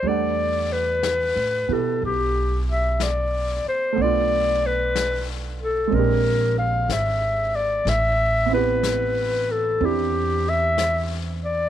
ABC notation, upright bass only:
X:1
M:4/4
L:1/8
Q:"Swing" 1/4=62
K:Em
V:1 name="Upright bass" clef=bass
E,,2- (3E,, A,, B,, B,,,3 z | B,,,4 ^A,,,2 ^G,,,2 | A,,,4 E,,4 |]